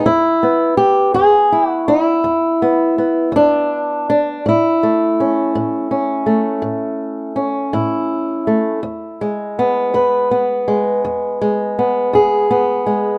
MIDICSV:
0, 0, Header, 1, 2, 480
1, 0, Start_track
1, 0, Tempo, 732601
1, 38, Time_signature, 12, 3, 24, 8
1, 8636, End_track
2, 0, Start_track
2, 0, Title_t, "Steel-string acoustic guitar"
2, 0, Program_c, 0, 25
2, 38, Note_on_c, 0, 40, 65
2, 38, Note_on_c, 0, 64, 76
2, 280, Note_on_c, 0, 59, 40
2, 468, Note_off_c, 0, 40, 0
2, 504, Note_off_c, 0, 64, 0
2, 507, Note_on_c, 0, 67, 79
2, 747, Note_off_c, 0, 67, 0
2, 750, Note_on_c, 0, 68, 81
2, 757, Note_on_c, 0, 40, 67
2, 998, Note_on_c, 0, 64, 45
2, 1103, Note_off_c, 0, 68, 0
2, 1103, Note_on_c, 0, 66, 81
2, 1187, Note_off_c, 0, 40, 0
2, 1229, Note_off_c, 0, 66, 0
2, 1232, Note_off_c, 0, 64, 0
2, 1232, Note_on_c, 0, 64, 74
2, 1468, Note_on_c, 0, 40, 62
2, 1710, Note_off_c, 0, 59, 0
2, 1717, Note_on_c, 0, 59, 44
2, 1901, Note_off_c, 0, 40, 0
2, 1946, Note_off_c, 0, 59, 0
2, 1954, Note_on_c, 0, 59, 45
2, 2175, Note_on_c, 0, 40, 64
2, 2201, Note_on_c, 0, 62, 82
2, 2614, Note_off_c, 0, 40, 0
2, 2669, Note_off_c, 0, 64, 0
2, 2675, Note_off_c, 0, 62, 0
2, 2684, Note_on_c, 0, 62, 72
2, 2882, Note_off_c, 0, 59, 0
2, 2916, Note_off_c, 0, 62, 0
2, 2920, Note_on_c, 0, 45, 68
2, 2939, Note_on_c, 0, 64, 67
2, 3165, Note_on_c, 0, 57, 43
2, 3346, Note_off_c, 0, 45, 0
2, 3408, Note_on_c, 0, 61, 47
2, 3639, Note_on_c, 0, 45, 70
2, 3864, Note_off_c, 0, 61, 0
2, 3872, Note_on_c, 0, 61, 50
2, 4065, Note_off_c, 0, 45, 0
2, 4096, Note_off_c, 0, 57, 0
2, 4103, Note_on_c, 0, 57, 42
2, 4337, Note_on_c, 0, 45, 63
2, 4775, Note_off_c, 0, 45, 0
2, 4813, Note_off_c, 0, 61, 0
2, 4821, Note_on_c, 0, 61, 48
2, 4843, Note_off_c, 0, 64, 0
2, 5066, Note_on_c, 0, 45, 68
2, 5070, Note_on_c, 0, 64, 49
2, 5499, Note_off_c, 0, 45, 0
2, 5543, Note_off_c, 0, 57, 0
2, 5551, Note_on_c, 0, 57, 40
2, 5756, Note_off_c, 0, 61, 0
2, 5761, Note_off_c, 0, 57, 0
2, 5784, Note_on_c, 0, 40, 69
2, 6036, Note_on_c, 0, 56, 52
2, 6219, Note_off_c, 0, 40, 0
2, 6282, Note_on_c, 0, 59, 59
2, 6512, Note_on_c, 0, 40, 64
2, 6513, Note_off_c, 0, 64, 0
2, 6516, Note_on_c, 0, 71, 54
2, 6749, Note_off_c, 0, 59, 0
2, 6757, Note_on_c, 0, 59, 53
2, 6944, Note_off_c, 0, 40, 0
2, 6988, Note_off_c, 0, 56, 0
2, 6996, Note_on_c, 0, 56, 46
2, 7237, Note_on_c, 0, 40, 66
2, 7471, Note_off_c, 0, 56, 0
2, 7479, Note_on_c, 0, 56, 50
2, 7668, Note_off_c, 0, 40, 0
2, 7715, Note_off_c, 0, 59, 0
2, 7723, Note_on_c, 0, 59, 49
2, 7950, Note_on_c, 0, 40, 64
2, 7955, Note_off_c, 0, 71, 0
2, 7960, Note_on_c, 0, 68, 54
2, 8186, Note_off_c, 0, 59, 0
2, 8194, Note_on_c, 0, 59, 51
2, 8385, Note_off_c, 0, 40, 0
2, 8421, Note_off_c, 0, 56, 0
2, 8429, Note_on_c, 0, 56, 47
2, 8636, Note_off_c, 0, 56, 0
2, 8636, Note_off_c, 0, 59, 0
2, 8636, Note_off_c, 0, 68, 0
2, 8636, End_track
0, 0, End_of_file